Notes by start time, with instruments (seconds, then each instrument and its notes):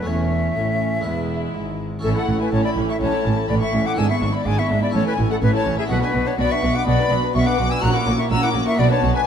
0.02 harpsichord A3 C#4 C#5
0.07 double bass section E1, cello section E2, harpsichord E2, viola section A3, violin section C#4 C#5, flute E5
0.56 double bass section A1, harpsichord A2, cello section A2
1.01 harpsichord G#3 E4 B4
1.05 double bass section E1, harpsichord E2, cello section E2, viola section G#3, violin section E4 B4
1.54 double bass section G#1, harpsichord G#2, cello section G#2
1.99 harpsichord C#4 E4 A4
2.03 double bass section A1, cello section A2, harpsichord A2, viola section E3, violin section C#4 E5, flute A4
2.15 viola section A3, violin section E4 F#5, flute A4
2.28 double bass section A1, cello section A2, harpsichord A2, viola section E3, violin section C#4
2.40 viola section A3, violin section E4 G#5, flute B4
2.52 double bass section A1, cello section A2, harpsichord A2, viola section E3, violin section C#4 A5, flute C#5
2.64 viola section A3, violin section E4 B5, flute D5
2.77 double bass section A1, harpsichord A2, cello section A2, viola section E3, violin section C#4
2.89 viola section A3, violin section E4 C#6, flute E5
3.01 double bass section A1, harpsichord A2, cello section A2, viola section E3, violin section C#4 A5, flute C#5
3.13 viola section A3, violin section E4
3.25 double bass section A1, harpsichord A2, cello section A2, viola section E3, violin section C#4
3.37 viola section A3, violin section E4
3.49 double bass section A1, harpsichord A2, cello section A2, viola section E3, violin section C#4 B5, flute D5
3.61 viola section A3, violin section E4 C#6, flute E5
3.73 double bass section A1, cello section A2, harpsichord A2, viola section E3, violin section C#4
3.85 viola section A3, violin section E4 D6, flute F#5
3.93 harpsichord D4 E4 B4, violin section D4
3.98 double bass section G#1, cello section G#2, harpsichord G#2, viola section G#3, flute G#5, violin section E6
4.10 viola section B3, violin section E4 C#6, flute E5
4.21 double bass section G#1, cello section G#2, harpsichord G#2, viola section G#3, violin section D4
4.33 viola section B3, violin section E4 B5, flute D5
4.46 double bass section G#1, harpsichord G#2, cello section G#2, viola section G#3, violin section D4 D6, flute G#5
4.58 viola section B3, violin section E4 C#6, flute E5
4.70 double bass section G#1, harpsichord G#2, cello section G#2, viola section G#3, violin section D4
4.81 viola section B3, violin section E4 B5, flute D5
4.90 harpsichord C#4 E4 A4
4.94 double bass section A1, harpsichord A2, cello section A2, viola section E3, violin section C#4 A5, flute C#5
5.06 viola section A3, violin section E4 G#5, flute B4
5.18 double bass section A1, harpsichord A2, cello section A2, viola section E3, violin section C#4
5.30 viola section A3, violin section E4 F#5, flute A4
5.42 double bass section A1, harpsichord A2, cello section A2, viola section E3, violin section C#4 G#5, flute B4
5.54 viola section A3, violin section E4 A5, flute C#5
5.66 double bass section A1, cello section A2, harpsichord A2, viola section E3, violin section C#4
5.78 viola section A3, violin section E4 E5, flute G#4
5.86 harpsichord B3 D4 F#4, viola section B3, violin section F#4 F#5, flute B4
5.90 double bass section B1, cello section B2, harpsichord B2
6.01 viola section D4, violin section B4 G#5, flute B4
6.14 double bass section B1, cello section B2, harpsichord B2, viola section B3, violin section F#4
6.26 viola section D4, violin section B4 A5, flute C#5
6.38 double bass section B1, cello section B2, harpsichord B2, viola section B3, violin section F#4 B5, flute D5
6.50 viola section D4, violin section B4 C#6, flute E5
6.62 double bass section B1, cello section B2, harpsichord B2, viola section B3, violin section F#4
6.74 viola section D4, violin section B4 D6, flute F#5
6.86 double bass section B1, cello section B2, harpsichord B2, viola section B3, violin section F#4 B5, flute D5
6.99 viola section D4, violin section B4
7.10 double bass section B1, cello section B2, harpsichord B2, viola section B3, violin section F#4
7.23 viola section D4, violin section B4
7.35 double bass section B1, cello section B2, harpsichord B2, viola section B3, violin section F#4 C#6, flute E5
7.46 viola section D4, violin section B4 D6, flute F#5
7.59 double bass section B1, harpsichord B2, cello section B2, viola section B3, violin section F#4
7.70 viola section D4, violin section B4 E6, flute G#5
7.78 harpsichord C#4 E4 F#4, flute A#5
7.83 double bass section A#1, harpsichord A#2, cello section A#2, viola section C#4, violin section F#4 F#6
7.94 viola section E4, violin section A#4 D6, flute F#5
8.07 double bass section A#1, harpsichord A#2, cello section A#2, viola section C#4, violin section F#4
8.18 viola section E4, violin section A#4 C#6, flute E5
8.30 double bass section A#1, harpsichord A#2, cello section A#2, viola section C#4, violin section F#4 E6, flute A#5
8.42 viola section E4, violin section A#4 D6, flute F#5
8.55 double bass section A#1, cello section A#2, harpsichord A#2, viola section C#4, violin section F#4
8.67 viola section E4, violin section A#4 C#6, flute E5
8.74 harpsichord B3 D4 F#4
8.79 double bass section B1, harpsichord B2, cello section B2, viola section B3, violin section F#4 B5, flute D5
8.90 viola section D4, violin section B4 A5, flute C#5
9.02 double bass section B1, cello section B2, harpsichord B2, viola section B3, violin section F#4
9.15 viola section D4, violin section B4 G#5, flute B4